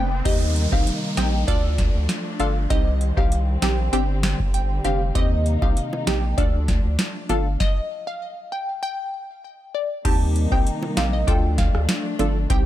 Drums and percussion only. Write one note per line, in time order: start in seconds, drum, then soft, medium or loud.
0.25 kick loud
0.25 closed hi-hat medium
0.25 crash medium
0.56 closed hi-hat medium
0.72 kick medium
0.87 closed hi-hat medium
1.17 snare loud
1.17 closed hi-hat medium
1.48 kick medium
1.48 closed hi-hat medium
1.78 kick medium
1.78 snare medium
1.78 closed hi-hat medium
2.09 snare loud
2.09 closed hi-hat medium
2.40 closed hi-hat medium
2.70 kick loud
2.70 closed hi-hat medium
3.01 closed hi-hat medium
3.17 kick medium
3.32 closed hi-hat medium
3.62 snare loud
3.62 closed hi-hat medium
3.93 closed hi-hat medium
4.23 snare loud
4.23 closed hi-hat medium
4.40 kick medium
4.54 closed hi-hat medium
4.84 closed hi-hat medium
5.15 kick loud
5.15 closed hi-hat medium
5.46 closed hi-hat medium
5.62 kick medium
5.62 high bongo medium
5.77 closed hi-hat medium
5.93 high bongo medium
6.07 snare loud
6.07 closed hi-hat medium
6.07 high bongo medium
6.07 low bongo medium
6.38 kick medium
6.38 closed hi-hat medium
6.68 kick medium
6.68 snare medium
6.68 closed hi-hat medium
6.68 high bongo soft
6.99 snare loud
6.99 closed hi-hat medium
6.99 high bongo medium
7.29 closed hi-hat medium
7.29 high bongo medium
7.29 low bongo medium
7.60 kick loud
7.60 snare medium
10.05 kick loud
10.05 closed hi-hat medium
10.05 crash loud
10.36 closed hi-hat medium
10.52 kick medium
10.67 closed hi-hat medium
10.83 high bongo medium
10.97 snare loud
10.97 closed hi-hat medium
10.97 high bongo medium
11.28 kick medium
11.28 closed hi-hat medium
11.58 kick medium
11.58 snare medium
11.58 closed hi-hat medium
11.58 high bongo soft
11.75 cross-stick medium
11.89 snare loud
11.89 closed hi-hat medium
11.89 high bongo medium
12.19 closed hi-hat medium
12.19 high bongo medium
12.19 low bongo medium
12.50 kick loud
12.50 closed hi-hat medium